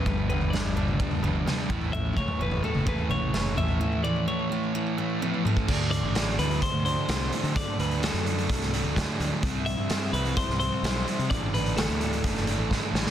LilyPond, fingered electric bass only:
\new Staff \with { instrumentName = "Fingered electric bass" } { \clef bass \time 4/4 \key a \mixolydian \tempo 4 = 128 g,,2 r8 g,,8 r8 a,,8~ | a,,8 cis,16 r16 fis,,8 r16 fis,,8 r16 a,,16 a,,16 fis,,8 a,,8 | r1 | \key d \mixolydian d,8. a,,8. d,8 r16 d,8 r16 c,8 r16 d16~ |
d16 r16 d,8. fis,8. c,8. d,8 r16 d,16 r16 | c,8. g,8. c,8 r16 c,8 r16 b,,8 r16 c16 | a,,8 a,,8. d,8. fis,,8. a,,8 r16 a,,16 r16 | }